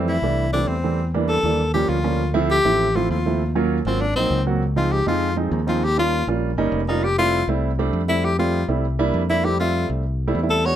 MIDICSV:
0, 0, Header, 1, 4, 480
1, 0, Start_track
1, 0, Key_signature, -1, "major"
1, 0, Tempo, 302115
1, 1567, Time_signature, 4, 2, 24, 8
1, 17092, End_track
2, 0, Start_track
2, 0, Title_t, "Tenor saxophone"
2, 0, Program_c, 0, 66
2, 136, Note_on_c, 0, 64, 73
2, 802, Note_off_c, 0, 64, 0
2, 840, Note_on_c, 0, 62, 85
2, 1074, Note_on_c, 0, 60, 72
2, 1098, Note_off_c, 0, 62, 0
2, 1801, Note_off_c, 0, 60, 0
2, 2036, Note_on_c, 0, 69, 93
2, 2712, Note_off_c, 0, 69, 0
2, 2760, Note_on_c, 0, 67, 91
2, 3001, Note_on_c, 0, 65, 81
2, 3025, Note_off_c, 0, 67, 0
2, 3725, Note_off_c, 0, 65, 0
2, 3978, Note_on_c, 0, 67, 106
2, 4701, Note_on_c, 0, 65, 90
2, 4725, Note_off_c, 0, 67, 0
2, 4932, Note_off_c, 0, 65, 0
2, 4941, Note_on_c, 0, 65, 69
2, 5606, Note_off_c, 0, 65, 0
2, 6138, Note_on_c, 0, 60, 85
2, 6371, Note_on_c, 0, 62, 94
2, 6395, Note_off_c, 0, 60, 0
2, 6592, Note_off_c, 0, 62, 0
2, 6602, Note_on_c, 0, 60, 92
2, 7053, Note_off_c, 0, 60, 0
2, 7580, Note_on_c, 0, 65, 92
2, 7819, Note_on_c, 0, 67, 94
2, 7843, Note_off_c, 0, 65, 0
2, 8056, Note_off_c, 0, 67, 0
2, 8068, Note_on_c, 0, 65, 90
2, 8507, Note_off_c, 0, 65, 0
2, 9026, Note_on_c, 0, 65, 85
2, 9284, Note_on_c, 0, 67, 100
2, 9308, Note_off_c, 0, 65, 0
2, 9508, Note_off_c, 0, 67, 0
2, 9516, Note_on_c, 0, 65, 99
2, 9951, Note_off_c, 0, 65, 0
2, 10932, Note_on_c, 0, 63, 86
2, 11181, Note_on_c, 0, 67, 100
2, 11205, Note_off_c, 0, 63, 0
2, 11402, Note_off_c, 0, 67, 0
2, 11411, Note_on_c, 0, 65, 105
2, 11857, Note_off_c, 0, 65, 0
2, 12847, Note_on_c, 0, 64, 89
2, 13104, Note_on_c, 0, 67, 96
2, 13127, Note_off_c, 0, 64, 0
2, 13320, Note_off_c, 0, 67, 0
2, 13329, Note_on_c, 0, 65, 88
2, 13775, Note_off_c, 0, 65, 0
2, 14772, Note_on_c, 0, 64, 96
2, 15008, Note_on_c, 0, 67, 87
2, 15032, Note_off_c, 0, 64, 0
2, 15238, Note_off_c, 0, 67, 0
2, 15248, Note_on_c, 0, 65, 86
2, 15693, Note_off_c, 0, 65, 0
2, 16680, Note_on_c, 0, 69, 93
2, 16930, Note_on_c, 0, 73, 98
2, 16953, Note_off_c, 0, 69, 0
2, 17092, Note_off_c, 0, 73, 0
2, 17092, End_track
3, 0, Start_track
3, 0, Title_t, "Grand piano"
3, 0, Program_c, 1, 0
3, 0, Note_on_c, 1, 52, 90
3, 0, Note_on_c, 1, 55, 77
3, 0, Note_on_c, 1, 57, 77
3, 0, Note_on_c, 1, 60, 95
3, 227, Note_off_c, 1, 60, 0
3, 228, Note_off_c, 1, 52, 0
3, 229, Note_off_c, 1, 57, 0
3, 231, Note_off_c, 1, 55, 0
3, 365, Note_on_c, 1, 52, 75
3, 370, Note_on_c, 1, 55, 73
3, 375, Note_on_c, 1, 57, 74
3, 376, Note_on_c, 1, 62, 86
3, 702, Note_off_c, 1, 52, 0
3, 704, Note_off_c, 1, 55, 0
3, 707, Note_off_c, 1, 57, 0
3, 707, Note_off_c, 1, 62, 0
3, 847, Note_on_c, 1, 52, 75
3, 850, Note_on_c, 1, 55, 71
3, 850, Note_on_c, 1, 60, 77
3, 852, Note_on_c, 1, 57, 67
3, 1183, Note_off_c, 1, 52, 0
3, 1185, Note_off_c, 1, 55, 0
3, 1185, Note_off_c, 1, 57, 0
3, 1185, Note_off_c, 1, 60, 0
3, 1335, Note_on_c, 1, 52, 77
3, 1335, Note_on_c, 1, 60, 77
3, 1336, Note_on_c, 1, 55, 69
3, 1340, Note_on_c, 1, 57, 64
3, 1571, Note_off_c, 1, 52, 0
3, 1571, Note_off_c, 1, 60, 0
3, 1572, Note_off_c, 1, 55, 0
3, 1574, Note_off_c, 1, 57, 0
3, 1815, Note_on_c, 1, 58, 78
3, 1816, Note_on_c, 1, 55, 81
3, 1817, Note_on_c, 1, 52, 94
3, 1820, Note_on_c, 1, 62, 97
3, 2147, Note_off_c, 1, 58, 0
3, 2148, Note_off_c, 1, 52, 0
3, 2148, Note_off_c, 1, 55, 0
3, 2150, Note_off_c, 1, 62, 0
3, 2291, Note_on_c, 1, 55, 70
3, 2293, Note_on_c, 1, 52, 76
3, 2296, Note_on_c, 1, 58, 65
3, 2300, Note_on_c, 1, 62, 76
3, 2530, Note_off_c, 1, 55, 0
3, 2531, Note_off_c, 1, 52, 0
3, 2532, Note_off_c, 1, 58, 0
3, 2534, Note_off_c, 1, 62, 0
3, 2769, Note_on_c, 1, 53, 86
3, 2769, Note_on_c, 1, 58, 77
3, 2770, Note_on_c, 1, 55, 73
3, 2778, Note_on_c, 1, 61, 84
3, 3105, Note_off_c, 1, 53, 0
3, 3105, Note_off_c, 1, 55, 0
3, 3105, Note_off_c, 1, 58, 0
3, 3109, Note_off_c, 1, 61, 0
3, 3244, Note_on_c, 1, 53, 75
3, 3246, Note_on_c, 1, 61, 84
3, 3247, Note_on_c, 1, 55, 75
3, 3247, Note_on_c, 1, 58, 75
3, 3487, Note_off_c, 1, 53, 0
3, 3488, Note_off_c, 1, 55, 0
3, 3488, Note_off_c, 1, 58, 0
3, 3488, Note_off_c, 1, 61, 0
3, 3718, Note_on_c, 1, 57, 90
3, 3719, Note_on_c, 1, 60, 87
3, 3719, Note_on_c, 1, 64, 112
3, 3720, Note_on_c, 1, 53, 95
3, 4060, Note_off_c, 1, 57, 0
3, 4060, Note_off_c, 1, 60, 0
3, 4060, Note_off_c, 1, 64, 0
3, 4061, Note_off_c, 1, 53, 0
3, 4212, Note_on_c, 1, 53, 76
3, 4212, Note_on_c, 1, 57, 75
3, 4215, Note_on_c, 1, 60, 78
3, 4215, Note_on_c, 1, 64, 90
3, 4547, Note_off_c, 1, 53, 0
3, 4547, Note_off_c, 1, 57, 0
3, 4548, Note_off_c, 1, 64, 0
3, 4549, Note_off_c, 1, 60, 0
3, 4695, Note_on_c, 1, 57, 71
3, 4697, Note_on_c, 1, 53, 83
3, 4704, Note_on_c, 1, 60, 74
3, 4704, Note_on_c, 1, 64, 83
3, 5029, Note_off_c, 1, 57, 0
3, 5030, Note_off_c, 1, 53, 0
3, 5033, Note_off_c, 1, 60, 0
3, 5033, Note_off_c, 1, 64, 0
3, 5181, Note_on_c, 1, 53, 74
3, 5182, Note_on_c, 1, 60, 67
3, 5185, Note_on_c, 1, 57, 71
3, 5193, Note_on_c, 1, 64, 83
3, 5416, Note_off_c, 1, 53, 0
3, 5416, Note_off_c, 1, 60, 0
3, 5418, Note_off_c, 1, 57, 0
3, 5422, Note_off_c, 1, 64, 0
3, 5647, Note_on_c, 1, 61, 86
3, 5650, Note_on_c, 1, 54, 89
3, 5652, Note_on_c, 1, 65, 94
3, 5655, Note_on_c, 1, 58, 83
3, 5985, Note_off_c, 1, 61, 0
3, 5987, Note_off_c, 1, 54, 0
3, 5987, Note_off_c, 1, 65, 0
3, 5989, Note_off_c, 1, 58, 0
3, 6141, Note_on_c, 1, 54, 75
3, 6141, Note_on_c, 1, 58, 65
3, 6146, Note_on_c, 1, 61, 68
3, 6146, Note_on_c, 1, 65, 84
3, 6376, Note_off_c, 1, 54, 0
3, 6376, Note_off_c, 1, 58, 0
3, 6378, Note_off_c, 1, 65, 0
3, 6379, Note_off_c, 1, 61, 0
3, 6624, Note_on_c, 1, 58, 69
3, 6625, Note_on_c, 1, 54, 76
3, 6627, Note_on_c, 1, 63, 91
3, 6632, Note_on_c, 1, 60, 79
3, 6954, Note_off_c, 1, 54, 0
3, 6954, Note_off_c, 1, 58, 0
3, 6955, Note_off_c, 1, 63, 0
3, 6958, Note_off_c, 1, 60, 0
3, 7095, Note_on_c, 1, 60, 67
3, 7096, Note_on_c, 1, 58, 74
3, 7098, Note_on_c, 1, 54, 73
3, 7101, Note_on_c, 1, 66, 81
3, 7334, Note_off_c, 1, 58, 0
3, 7334, Note_off_c, 1, 60, 0
3, 7335, Note_off_c, 1, 54, 0
3, 7337, Note_off_c, 1, 66, 0
3, 7566, Note_on_c, 1, 53, 74
3, 7567, Note_on_c, 1, 56, 69
3, 7567, Note_on_c, 1, 60, 68
3, 7567, Note_on_c, 1, 63, 84
3, 7905, Note_off_c, 1, 53, 0
3, 7905, Note_off_c, 1, 63, 0
3, 7906, Note_off_c, 1, 56, 0
3, 7906, Note_off_c, 1, 60, 0
3, 8045, Note_on_c, 1, 56, 77
3, 8046, Note_on_c, 1, 53, 85
3, 8046, Note_on_c, 1, 63, 87
3, 8052, Note_on_c, 1, 60, 77
3, 8385, Note_off_c, 1, 53, 0
3, 8385, Note_off_c, 1, 56, 0
3, 8385, Note_off_c, 1, 63, 0
3, 8388, Note_off_c, 1, 60, 0
3, 8522, Note_on_c, 1, 53, 77
3, 8525, Note_on_c, 1, 56, 73
3, 8528, Note_on_c, 1, 63, 85
3, 8531, Note_on_c, 1, 60, 72
3, 8863, Note_off_c, 1, 53, 0
3, 8865, Note_off_c, 1, 56, 0
3, 8866, Note_off_c, 1, 63, 0
3, 8867, Note_off_c, 1, 60, 0
3, 9002, Note_on_c, 1, 56, 67
3, 9005, Note_on_c, 1, 53, 73
3, 9009, Note_on_c, 1, 63, 85
3, 9011, Note_on_c, 1, 60, 73
3, 9247, Note_off_c, 1, 56, 0
3, 9248, Note_off_c, 1, 53, 0
3, 9251, Note_off_c, 1, 63, 0
3, 9252, Note_off_c, 1, 60, 0
3, 9490, Note_on_c, 1, 58, 69
3, 9493, Note_on_c, 1, 55, 72
3, 9496, Note_on_c, 1, 65, 84
3, 9499, Note_on_c, 1, 61, 71
3, 9827, Note_off_c, 1, 58, 0
3, 9828, Note_off_c, 1, 55, 0
3, 9830, Note_off_c, 1, 65, 0
3, 9832, Note_off_c, 1, 61, 0
3, 9976, Note_on_c, 1, 55, 80
3, 9982, Note_on_c, 1, 58, 70
3, 9984, Note_on_c, 1, 65, 87
3, 9987, Note_on_c, 1, 61, 69
3, 10310, Note_off_c, 1, 55, 0
3, 10313, Note_off_c, 1, 58, 0
3, 10314, Note_off_c, 1, 65, 0
3, 10315, Note_off_c, 1, 61, 0
3, 10454, Note_on_c, 1, 58, 90
3, 10455, Note_on_c, 1, 61, 89
3, 10456, Note_on_c, 1, 55, 94
3, 10456, Note_on_c, 1, 63, 110
3, 10789, Note_off_c, 1, 58, 0
3, 10789, Note_off_c, 1, 61, 0
3, 10790, Note_off_c, 1, 55, 0
3, 10790, Note_off_c, 1, 63, 0
3, 10942, Note_on_c, 1, 55, 85
3, 10942, Note_on_c, 1, 58, 69
3, 10943, Note_on_c, 1, 61, 69
3, 10947, Note_on_c, 1, 65, 92
3, 11177, Note_off_c, 1, 55, 0
3, 11177, Note_off_c, 1, 58, 0
3, 11177, Note_off_c, 1, 61, 0
3, 11179, Note_off_c, 1, 65, 0
3, 11416, Note_on_c, 1, 57, 74
3, 11417, Note_on_c, 1, 55, 79
3, 11421, Note_on_c, 1, 60, 81
3, 11422, Note_on_c, 1, 64, 98
3, 11749, Note_off_c, 1, 57, 0
3, 11750, Note_off_c, 1, 55, 0
3, 11752, Note_off_c, 1, 60, 0
3, 11752, Note_off_c, 1, 64, 0
3, 11894, Note_on_c, 1, 64, 92
3, 11895, Note_on_c, 1, 55, 84
3, 11899, Note_on_c, 1, 57, 79
3, 11899, Note_on_c, 1, 60, 76
3, 12228, Note_off_c, 1, 64, 0
3, 12229, Note_off_c, 1, 55, 0
3, 12230, Note_off_c, 1, 57, 0
3, 12230, Note_off_c, 1, 60, 0
3, 12372, Note_on_c, 1, 55, 89
3, 12380, Note_on_c, 1, 62, 106
3, 12381, Note_on_c, 1, 57, 84
3, 12382, Note_on_c, 1, 60, 86
3, 12707, Note_off_c, 1, 55, 0
3, 12711, Note_off_c, 1, 57, 0
3, 12711, Note_off_c, 1, 62, 0
3, 12712, Note_off_c, 1, 60, 0
3, 12840, Note_on_c, 1, 55, 73
3, 12845, Note_on_c, 1, 57, 70
3, 12845, Note_on_c, 1, 64, 86
3, 12847, Note_on_c, 1, 60, 69
3, 13180, Note_off_c, 1, 55, 0
3, 13183, Note_off_c, 1, 57, 0
3, 13183, Note_off_c, 1, 64, 0
3, 13184, Note_off_c, 1, 60, 0
3, 13324, Note_on_c, 1, 57, 72
3, 13324, Note_on_c, 1, 67, 79
3, 13326, Note_on_c, 1, 60, 73
3, 13327, Note_on_c, 1, 55, 81
3, 13662, Note_off_c, 1, 57, 0
3, 13662, Note_off_c, 1, 67, 0
3, 13663, Note_off_c, 1, 60, 0
3, 13664, Note_off_c, 1, 55, 0
3, 13799, Note_on_c, 1, 55, 81
3, 13804, Note_on_c, 1, 64, 83
3, 13805, Note_on_c, 1, 57, 74
3, 13810, Note_on_c, 1, 60, 67
3, 14044, Note_off_c, 1, 55, 0
3, 14046, Note_off_c, 1, 64, 0
3, 14047, Note_off_c, 1, 57, 0
3, 14049, Note_off_c, 1, 60, 0
3, 14283, Note_on_c, 1, 55, 101
3, 14284, Note_on_c, 1, 58, 88
3, 14288, Note_on_c, 1, 64, 108
3, 14290, Note_on_c, 1, 62, 96
3, 14621, Note_off_c, 1, 55, 0
3, 14622, Note_off_c, 1, 58, 0
3, 14624, Note_off_c, 1, 64, 0
3, 14625, Note_off_c, 1, 62, 0
3, 14766, Note_on_c, 1, 58, 73
3, 14772, Note_on_c, 1, 62, 69
3, 14773, Note_on_c, 1, 55, 76
3, 14773, Note_on_c, 1, 64, 89
3, 14981, Note_off_c, 1, 55, 0
3, 14984, Note_off_c, 1, 64, 0
3, 15004, Note_on_c, 1, 55, 75
3, 15004, Note_on_c, 1, 57, 64
3, 15007, Note_off_c, 1, 58, 0
3, 15007, Note_on_c, 1, 64, 81
3, 15009, Note_off_c, 1, 62, 0
3, 15009, Note_on_c, 1, 60, 69
3, 15173, Note_off_c, 1, 57, 0
3, 15174, Note_off_c, 1, 55, 0
3, 15175, Note_off_c, 1, 64, 0
3, 15176, Note_off_c, 1, 60, 0
3, 15256, Note_on_c, 1, 55, 66
3, 15261, Note_on_c, 1, 57, 67
3, 15261, Note_on_c, 1, 60, 59
3, 15263, Note_on_c, 1, 76, 75
3, 15923, Note_off_c, 1, 55, 0
3, 15925, Note_off_c, 1, 57, 0
3, 15925, Note_off_c, 1, 60, 0
3, 15926, Note_off_c, 1, 76, 0
3, 16324, Note_on_c, 1, 55, 90
3, 16327, Note_on_c, 1, 60, 79
3, 16328, Note_on_c, 1, 57, 81
3, 16328, Note_on_c, 1, 64, 96
3, 16493, Note_off_c, 1, 55, 0
3, 16494, Note_off_c, 1, 60, 0
3, 16495, Note_off_c, 1, 57, 0
3, 16495, Note_off_c, 1, 64, 0
3, 16575, Note_on_c, 1, 55, 74
3, 16575, Note_on_c, 1, 57, 67
3, 16576, Note_on_c, 1, 64, 87
3, 16578, Note_on_c, 1, 60, 66
3, 16822, Note_off_c, 1, 55, 0
3, 16822, Note_off_c, 1, 57, 0
3, 16823, Note_off_c, 1, 64, 0
3, 16824, Note_off_c, 1, 60, 0
3, 16931, Note_on_c, 1, 56, 72
3, 16932, Note_on_c, 1, 59, 67
3, 16933, Note_on_c, 1, 66, 84
3, 16935, Note_on_c, 1, 62, 70
3, 17092, Note_off_c, 1, 56, 0
3, 17092, Note_off_c, 1, 59, 0
3, 17092, Note_off_c, 1, 62, 0
3, 17092, Note_off_c, 1, 66, 0
3, 17092, End_track
4, 0, Start_track
4, 0, Title_t, "Fingered electric bass"
4, 0, Program_c, 2, 33
4, 0, Note_on_c, 2, 41, 100
4, 277, Note_off_c, 2, 41, 0
4, 350, Note_on_c, 2, 36, 86
4, 1027, Note_off_c, 2, 36, 0
4, 1073, Note_on_c, 2, 40, 88
4, 2193, Note_off_c, 2, 40, 0
4, 2275, Note_on_c, 2, 39, 91
4, 2951, Note_off_c, 2, 39, 0
4, 2995, Note_on_c, 2, 38, 94
4, 4115, Note_off_c, 2, 38, 0
4, 4205, Note_on_c, 2, 33, 91
4, 4877, Note_off_c, 2, 33, 0
4, 4929, Note_on_c, 2, 39, 97
4, 6043, Note_off_c, 2, 39, 0
4, 6120, Note_on_c, 2, 32, 86
4, 6572, Note_off_c, 2, 32, 0
4, 6604, Note_on_c, 2, 34, 64
4, 6831, Note_off_c, 2, 34, 0
4, 6838, Note_on_c, 2, 37, 96
4, 7957, Note_off_c, 2, 37, 0
4, 8049, Note_on_c, 2, 41, 86
4, 8720, Note_off_c, 2, 41, 0
4, 8763, Note_on_c, 2, 39, 99
4, 9880, Note_off_c, 2, 39, 0
4, 9966, Note_on_c, 2, 34, 89
4, 10415, Note_off_c, 2, 34, 0
4, 10441, Note_on_c, 2, 31, 70
4, 10665, Note_off_c, 2, 31, 0
4, 10675, Note_on_c, 2, 29, 102
4, 11795, Note_off_c, 2, 29, 0
4, 11876, Note_on_c, 2, 36, 101
4, 12552, Note_off_c, 2, 36, 0
4, 12601, Note_on_c, 2, 41, 99
4, 13717, Note_off_c, 2, 41, 0
4, 13797, Note_on_c, 2, 36, 91
4, 14471, Note_off_c, 2, 36, 0
4, 14518, Note_on_c, 2, 41, 105
4, 15634, Note_off_c, 2, 41, 0
4, 15722, Note_on_c, 2, 36, 96
4, 16393, Note_off_c, 2, 36, 0
4, 16440, Note_on_c, 2, 40, 91
4, 17092, Note_off_c, 2, 40, 0
4, 17092, End_track
0, 0, End_of_file